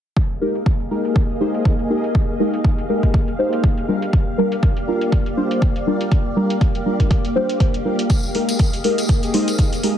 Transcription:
0.16 string machine A#3 G4 G#4 D#5 F5, kick, closed hi-hat
0.41 synth stab G#3 D#4 G4 A#4
0.55 closed hi-hat
0.66 kick
0.80 closed hi-hat
0.91 synth stab G#3 D#4 G4 A#4
1.05 closed hi-hat
1.16 kick, closed hi-hat
1.30 closed hi-hat
1.40 synth stab G#3 D#4 G4 C5
1.54 closed hi-hat
1.65 kick, closed hi-hat
1.79 closed hi-hat
1.90 synth stab G#3 D#4 G4 A#4
2.04 closed hi-hat
2.15 kick, closed hi-hat
2.40 synth stab G#3 D#4 G4 A#4
2.54 closed hi-hat
2.64 kick, closed hi-hat
2.78 closed hi-hat
2.89 synth stab G#3 D#4 G4 A#4
3.03 kick, closed hi-hat
3.14 kick, closed hi-hat
3.28 closed hi-hat
3.39 synth stab G#3 D#4 G4 C5
3.53 closed hi-hat
3.64 kick, closed hi-hat
3.78 closed hi-hat
3.88 synth stab G3 D4 F4 A#4, string machine A#3 D5
4.02 closed hi-hat
4.13 kick, closed hi-hat
4.38 synth stab G3 D4 F4 A#4
4.52 closed hi-hat
4.63 kick, closed hi-hat
4.77 closed hi-hat
4.88 synth stab G3 D4 F4 A#4
5.01 closed hi-hat
5.12 kick, closed hi-hat
5.26 closed hi-hat
5.37 synth stab G3 D4 F4 C5
5.51 closed hi-hat
5.62 kick, closed hi-hat
5.76 closed hi-hat
5.87 synth stab G3 D4 F4 A#4
6.01 closed hi-hat
6.12 kick, closed hi-hat
6.36 synth stab G3 D4 F4 A#4
6.50 closed hi-hat
6.61 kick, closed hi-hat
6.75 closed hi-hat
6.86 synth stab G3 D4 F4 A#4
7.00 kick, closed hi-hat
7.11 kick, closed hi-hat
7.25 closed hi-hat
7.35 synth stab G3 D4 F4 C5
7.49 closed hi-hat
7.60 kick, closed hi-hat
7.74 closed hi-hat
7.85 synth stab G3 D4 F4 A#4
7.99 closed hi-hat
8.10 string machine G#4 D#5, kick, closed hi-hat, tambourine
8.23 tambourine
8.35 synth stab G#3 D#4 G4 A#4, open hi-hat
8.49 closed hi-hat, tambourine
8.59 kick, closed hi-hat, tambourine
8.73 closed hi-hat, tambourine
8.84 synth stab G#3 D#4 G4 A#4, open hi-hat
8.98 closed hi-hat, tambourine
9.08 kick, closed hi-hat, tambourine
9.23 closed hi-hat, tambourine
9.34 synth stab G#3 D#4 G4 C5, open hi-hat
9.48 closed hi-hat, tambourine
9.58 kick, closed hi-hat, tambourine
9.73 closed hi-hat, tambourine
9.83 synth stab G#3 D#4 G4 A#4, open hi-hat

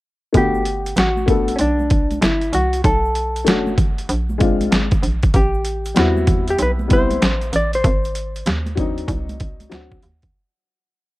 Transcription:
0.33 fm bass G1, upright piano A3 B3 D4, kick, closed hi-hat, shaker
0.37 upright piano F#4, hollow-body jazz guitar G4
0.54 shaker
0.65 closed hi-hat, shaker
0.86 closed hi-hat, shaker
0.96 fm bass A1, hollow-body jazz guitar F#4, snare, closed hi-hat, low conga, shaker
1.17 high conga, shaker
1.26 upright piano A3 B3 D4 A4, kick, closed hi-hat, low conga, shaker
1.48 closed hi-hat, shaker
1.56 fm bass B1, hollow-body jazz guitar C#4, closed hi-hat
1.60 hollow-body jazz guitar D4, shaker
1.79 high conga, shaker
1.90 kick, closed hi-hat, shaker
2.11 closed hi-hat, high conga, shaker
2.21 fm bass G1, hollow-body jazz guitar E4, snare, closed hi-hat, shaker
2.41 closed hi-hat, shaker
2.53 fm bass C2, hollow-body jazz guitar F#4, closed hi-hat, low conga, shaker
2.73 closed hi-hat, shaker
2.84 fm bass B1, hollow-body jazz guitar A4, kick, closed hi-hat, shaker
3.05 shaker
3.15 closed hi-hat, shaker
3.36 closed hi-hat, shaker
3.44 fm bass F#1, upright piano A3 C#4 D4, snare, closed hi-hat, low conga, shaker
3.49 upright piano F#4
3.67 high conga, shaker
3.78 kick, closed hi-hat, low conga, shaker
3.98 closed hi-hat, shaker
4.09 fm bass A#1, closed hi-hat, shaker
4.29 high conga, shaker
4.38 upright piano G#3 C4 D4 F4, kick, closed hi-hat, shaker
4.61 closed hi-hat, high conga, shaker
4.71 fm bass G#1, snare, closed hi-hat, shaker
4.91 kick, closed hi-hat, shaker
5.03 fm bass A#1, closed hi-hat, low conga, shaker
5.23 kick, closed hi-hat, shaker
5.34 fm bass A1, hollow-body jazz guitar G4, kick, closed hi-hat, shaker
5.54 shaker
5.65 closed hi-hat, shaker
5.85 closed hi-hat, shaker
5.94 fm bass E2, upright piano G3 B3 C4 E4, snare, closed hi-hat, low conga, shaker
5.99 hollow-body jazz guitar F#4
6.17 high conga, shaker
6.27 kick, closed hi-hat, low conga, shaker
6.48 hollow-body jazz guitar G4, closed hi-hat, shaker
6.59 fm bass B1, hollow-body jazz guitar B4, closed hi-hat, shaker
6.79 high conga, shaker
6.88 upright piano G3 B3 C4, kick, closed hi-hat, shaker
6.92 upright piano E4, hollow-body jazz guitar C5
7.11 closed hi-hat, high conga, shaker
7.22 fm bass A1, snare, closed hi-hat, shaker
7.41 closed hi-hat, shaker
7.53 fm bass A1, hollow-body jazz guitar D5, closed hi-hat, low conga, shaker
7.73 hollow-body jazz guitar C5, closed hi-hat, shaker
7.84 fm bass G#1, kick, closed hi-hat, shaker
8.04 closed hi-hat, shaker
8.15 closed hi-hat, shaker
8.35 closed hi-hat, shaker
8.46 fm bass D#2, snare, closed hi-hat, low conga, shaker
8.66 closed hi-hat, high conga, shaker
8.75 upright piano F#3 C4 D4, kick, closed hi-hat, low conga, shaker
8.79 upright piano D#4
8.98 closed hi-hat, shaker
9.08 fm bass C2, kick, closed hi-hat, shaker
9.29 closed hi-hat, high conga, shaker
9.40 kick, closed hi-hat, shaker
9.60 closed hi-hat, high conga, shaker
9.70 fm bass D2, upright piano F#3 C4 D4 F#4, snare, closed hi-hat, shaker
9.91 kick, shaker
10.02 fm bass D#2, closed hi-hat, low conga, shaker
10.22 kick, closed hi-hat

